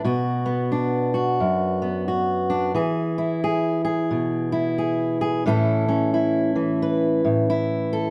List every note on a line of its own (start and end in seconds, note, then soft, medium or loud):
0.05 1.40 B2 medium
0.05 1.13 F#4 medium
0.46 1.81 B3 medium
0.72 2.49 D4 medium
1.14 2.07 F#4 medium
1.40 2.75 F#2 medium
1.82 2.72 B3 medium
2.08 2.75 F#4 medium
2.50 2.72 D4 medium
2.75 5.45 E3 medium
2.75 3.43 G#4 medium
3.18 4.51 E4 medium
3.44 3.83 G#4 medium
3.85 4.77 G#4 medium
4.11 5.46 B2 medium
4.52 5.42 E4 medium
4.78 5.20 G#4 medium
5.21 5.43 G#4 medium
5.46 7.23 A2 medium
5.46 6.55 E3 medium
5.46 5.87 C#4 medium
5.46 6.13 E4 medium
5.46 6.82 A4 medium
5.89 8.10 C#4 medium
6.14 7.49 E4 medium
6.56 8.10 E3 medium
6.82 7.92 B4 medium
7.25 8.10 A2 medium
7.50 8.10 E4 medium
7.93 8.10 A4 medium